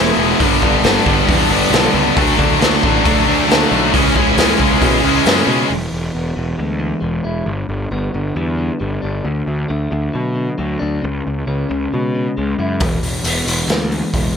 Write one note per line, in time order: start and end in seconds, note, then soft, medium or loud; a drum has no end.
0.00 0.11 E1 medium
0.00 0.16 E2 medium
0.00 0.17 B2 loud
0.00 0.39 E3 medium
0.00 0.40 G#3 medium
0.00 0.40 B3 medium
0.00 0.41 E4 medium
0.17 0.33 E1 medium
0.17 0.39 E2 medium
0.17 0.39 B2 medium
0.17 0.39 E3 medium
0.40 0.55 G1 loud
0.40 0.84 G2 loud
0.40 0.83 D3 loud
0.40 0.64 G3 loud
0.40 0.63 B3 loud
0.40 0.62 D4 loud
0.40 kick loud
0.40 open hi-hat medium
0.62 0.78 G1 medium
0.62 0.82 G2 medium
0.62 0.83 D3 medium
0.62 0.84 G3 medium
0.62 0.85 B3 medium
0.62 0.86 D4 medium
0.62 kick medium
0.83 0.99 G1 medium
0.83 1.04 G2 medium
0.83 1.27 D3 medium
0.83 1.07 G3 medium
0.83 1.06 B3 medium
0.83 1.05 D4 medium
0.83 snare loud
0.83 open hi-hat medium
1.06 1.22 G1 medium
1.06 1.26 G2 loud
1.06 1.27 D3 medium
1.06 1.28 G3 medium
1.06 1.28 B3 medium
1.06 1.29 D4 medium
1.06 kick medium
1.27 1.44 E2 medium
1.27 1.72 G2 medium
1.27 1.71 D3 loud
1.27 1.52 G3 medium
1.27 1.51 B3 loud
1.27 1.49 D4 loud
1.27 kick loud
1.27 open hi-hat medium
1.49 1.65 G1 loud
1.49 1.71 G2 medium
1.49 1.72 D3 medium
1.49 1.72 G3 medium
1.49 1.73 B3 medium
1.49 1.74 D4 medium
1.70 1.87 B1 medium
1.70 1.93 G2 medium
1.70 2.14 D3 medium
1.70 2.16 G3 medium
1.70 2.16 B3 medium
1.70 snare loud
1.70 open hi-hat medium
1.75 2.17 D4 medium
1.94 2.10 C#2 loud
1.94 2.15 G2 medium
1.94 2.16 D3 medium
1.94 2.16 G3 medium
2.16 2.32 D2 loud
2.16 2.59 D3 loud
2.16 2.39 F#3 loud
2.16 2.39 A3 loud
2.16 2.37 D4 loud
2.16 kick loud
2.16 open hi-hat medium
2.38 2.54 D2 medium
2.38 2.59 D3 medium
2.38 2.60 F#3 medium
2.38 2.61 A3 medium
2.38 2.62 D4 medium
2.38 kick medium
2.60 2.76 D2 medium
2.60 3.03 D3 medium
2.60 2.84 F#3 medium
2.60 2.83 A3 medium
2.60 2.81 D4 loud
2.60 snare loud
2.60 open hi-hat medium
2.82 2.99 A1 medium
2.82 3.02 D3 medium
2.82 3.04 F#3 medium
2.82 3.05 A3 medium
2.82 3.06 D4 medium
2.82 kick medium
3.05 3.21 D2 medium
3.05 3.46 D3 medium
3.05 3.29 F#3 medium
3.05 3.27 A3 loud
3.05 3.26 D4 loud
3.05 kick loud
3.05 open hi-hat medium
3.26 3.42 D2 medium
3.26 3.46 D3 loud
3.26 3.48 F#3 medium
3.26 3.48 A3 medium
3.26 3.49 D4 medium
3.48 3.64 D2 medium
3.48 3.91 D3 medium
3.48 3.92 F#3 medium
3.48 3.92 A3 loud
3.48 3.93 D4 loud
3.48 open hi-hat medium
3.52 snare loud
3.69 3.94 B1 medium
3.69 3.91 D3 medium
3.69 3.91 A3 medium
3.69 3.92 D4 loud
3.93 4.09 C#2 loud
3.93 4.35 C#3 loud
3.93 4.16 E3 loud
3.93 4.15 G#3 loud
3.93 4.13 C#4 loud
3.93 kick loud
3.93 open hi-hat medium
4.14 4.31 C#2 medium
4.14 4.36 C#3 medium
4.14 4.36 E3 medium
4.14 4.37 G#3 medium
4.14 4.38 C#4 medium
4.14 kick medium
4.37 4.53 C#2 loud
4.37 4.80 C#3 medium
4.37 4.61 E3 medium
4.37 4.60 G#3 medium
4.37 4.58 C#4 medium
4.37 snare loud
4.37 open hi-hat medium
4.59 4.75 C#2 loud
4.59 4.80 C#3 loud
4.59 4.81 E3 medium
4.59 4.82 G#3 medium
4.59 4.82 C#4 medium
4.59 kick medium
4.81 4.97 B2 medium
4.81 5.24 C#3 medium
4.81 5.04 E3 medium
4.81 5.03 G#3 medium
4.81 5.01 C#4 loud
4.81 kick loud
4.81 open hi-hat medium
5.02 5.19 C#2 medium
5.02 5.25 C#3 medium
5.02 5.25 E3 medium
5.02 5.25 G#3 medium
5.02 5.26 C#4 medium
5.25 5.41 F#2 medium
5.25 5.68 C#3 medium
5.25 5.69 E3 medium
5.25 5.69 G#3 medium
5.25 5.70 C#4 medium
5.25 snare loud
5.25 open hi-hat medium
5.47 5.63 B2 loud
5.47 5.69 C#3 medium
5.47 5.69 G#3 medium
5.47 5.69 C#4 medium
5.70 5.87 E1 loud
5.70 6.35 E3 medium
5.92 6.09 E1 medium
6.14 6.31 E1 medium
6.14 7.25 B3 medium
6.36 6.53 E1 medium
6.36 6.78 E3 medium
6.58 6.92 D2 medium
6.58 7.00 G#3 medium
6.79 7.47 E3 medium
7.01 7.19 E1 medium
7.01 7.47 G#3 medium
7.24 7.42 E1 medium
7.24 7.47 E4 medium
7.46 7.63 G1 medium
7.46 8.59 G2 medium
7.69 7.86 G1 medium
7.91 8.08 G1 medium
7.91 9.03 B3 medium
8.14 8.31 G1 medium
8.14 8.57 D3 medium
8.36 8.69 E2 medium
8.36 8.79 G3 medium
8.58 9.24 D3 medium
8.80 8.98 G1 medium
8.80 9.25 G3 medium
9.02 9.20 G1 medium
9.02 9.25 D4 medium
9.25 9.42 D2 medium
9.25 9.90 D3 medium
9.47 9.64 D2 medium
9.68 9.87 D2 medium
9.68 10.80 A3 medium
9.91 10.09 D2 medium
9.91 10.34 D3 medium
10.13 10.48 B2 medium
10.13 10.57 F#3 medium
10.35 11.01 D3 medium
10.58 10.75 D2 medium
10.58 11.03 F#3 medium
10.79 10.98 D2 medium
10.79 11.02 D4 medium
11.02 11.20 C#2 loud
11.02 11.68 C#3 medium
11.27 11.43 C#2 medium
11.47 11.64 C#2 medium
11.47 12.58 C#4 medium
11.69 11.87 C#2 medium
11.69 12.14 C#3 medium
11.93 12.26 B2 medium
11.93 12.36 G#3 medium
12.15 12.81 C#3 medium
12.37 12.54 C#2 medium
12.37 12.81 G#3 medium
12.59 12.82 F#2 medium
12.59 12.81 E4 medium
12.80 12.97 E1 loud
12.80 13.46 E3 medium
12.80 kick loud
12.80 open hi-hat medium
13.01 13.18 E1 medium
13.01 open hi-hat medium
13.24 13.41 E1 medium
13.24 14.36 B3 medium
13.24 open hi-hat medium
13.45 13.63 E1 medium
13.45 13.90 E3 medium
13.45 open hi-hat medium
13.67 14.01 D2 medium
13.67 14.13 G#3 medium
13.67 snare loud
13.67 open hi-hat medium
13.92 14.37 E3 medium
13.92 open hi-hat medium
14.14 14.30 E1 medium
14.14 14.37 G#3 medium
14.14 kick medium
14.14 open hi-hat medium